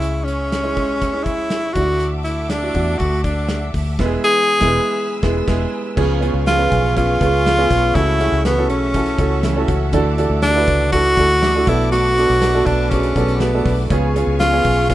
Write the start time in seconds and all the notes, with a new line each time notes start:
Already playing: C#2 C#3 G#3 C#4 E4 G#4 C#5 E5 C#6
0.02 closed hi-hat
0.25 C#4, closed hi-hat
0.52 snare, closed hi-hat
0.63 G#3 C#4 E4 G#4
0.76 B1 G#3 C#4 E4 G#4, kick, closed hi-hat
1.01 C#2, kick, closed hi-hat
1.13 G#3 C#4 E4 G#4
1.24 E4, kick, closed hi-hat
1.50 snare, closed hi-hat
1.73 D2 D3 A3 D4 E4 F#4 A4 F#5 D6, kick, closed hi-hat
2.00 closed hi-hat
2.24 E4, closed hi-hat
2.50 D4, snare, closed hi-hat
2.62 A3 D4 E4 F#4
2.74 E2 A3 D4 E4 F#4, kick, closed hi-hat
2.98 D2 F#4, kick, closed hi-hat
3.24 D4, kick, closed hi-hat
3.49 snare, closed hi-hat
3.74 D2, kick, snare, open hi-hat
3.99 E1 E3 G#3 B3 E4 B4 G#5 E6, kick, snare, crash
4.06 G#4
4.24 G#4
4.60 E1 G#3 B3 E4, kick, snare
5.22 E1 G#3 B3 E4 G#4, kick, snare
5.47 E1 G#3 B3 E4 G#4, kick, snare, crash
5.96 C#2 C#3 F3 B3 C#4 F4 G#4 B4 F5 G#5 C#6, kick, crash
6.21 B3 C#4 F4 G#4, closed hi-hat
6.25 B3
6.34 C#2
6.47 C#3 F3 B3 C#4 F4 G#4, snare, closed hi-hat
6.58 B3 C#4 F4 B4
6.72 B1, kick, closed hi-hat
6.96 F3 B3 C#4 F4 G#4, kick, closed hi-hat
7.21 C#2 B3 C#4 F4 G#4, kick, closed hi-hat
7.46 C#3 F3 B3 C#4 G#4, snare, closed hi-hat
7.58 B3 C#4 F4 G#4
7.71 B1 B3 C#4, kick, snare, closed hi-hat
7.94 C#2 C#3 E3 A3 C#4 E4 F#4 A4 E5 F#5, kick, closed hi-hat
8.19 A3 C#4 E4 F#4 G#4, closed hi-hat
8.32 C#2
8.45 C#3 E3 A3 B3 C#4 F#4, snare, closed hi-hat
8.58 C#4 E4 F#4 A4
8.69 B1 C#4, closed hi-hat
8.94 E3 A3 C#4 E4 F#4 A4, kick, closed hi-hat
9.06 closed hi-hat
9.18 C#2 A3 C#4 E4 F#4 A4, kick, closed hi-hat
9.43 C#3 E3 A3 C#4 F#4, snare, closed hi-hat
9.56 C#4 E4 F#4 A4
9.67 C#2 A3 C#4 F#4, kick, snare, closed hi-hat
9.92 D2 D3 E3 A3 D4 E4 F#4 A4 D6, kick, closed hi-hat
10.17 A3 D4 E4 F#4 A4, closed hi-hat
10.30 D2
10.42 D3 E3 A3 D4 F#4, snare, closed hi-hat
10.55 D4 E4 F#4 B4
10.67 C#2, kick, closed hi-hat
10.91 E3 A3 D4 E4 F#4 A4, kick, closed hi-hat
11.05 closed hi-hat
11.17 D2 A3 D4 E4 F#4 A4, kick, closed hi-hat
11.30 closed hi-hat
11.41 D3 E3 A3 D4 F#4, snare, closed hi-hat
11.55 D4 E4 F#4 A4
11.67 B1 B2 A3 B3 D4 E4 F#4 A4 B4 A5, kick, snare, closed hi-hat
11.91 B2 F#3 A3 D4 F#4, closed hi-hat
12.15 A3 B3 D4 F#4 A4, closed hi-hat
12.30 B1
12.41 B2 F#3 A3 D4 F#4, snare, closed hi-hat
12.54 B3 D4 F#4 A4
12.66 B1 D4, kick, closed hi-hat
12.89 F#3 A3 B3 C#4 D4 F#4 G#4, kick, closed hi-hat
13.03 closed hi-hat
13.14 B1 A3 B3 D4 F#4 A4, kick, closed hi-hat
13.28 closed hi-hat
13.39 B2 F#3 A3 B3 D4 F#4, snare, closed hi-hat
13.54 B3 D4 F#4 A4
13.64 B1 A3 D4 F#4, kick, snare, open hi-hat
13.89 C#2 C#3 F3 B3 C#4 F4 G#4 B4 F5 G#5 C#6, kick, closed hi-hat
14.14 B3 C#4 F4 G#4, closed hi-hat
14.27 C#2
14.39 C#3 F3 B3 C#4 F4 G#4, snare, closed hi-hat
14.53 B3 C#4 F4 G#4
14.64 B1, kick, closed hi-hat
14.88 F3 B3 C#4 F4 G#4, kick, closed hi-hat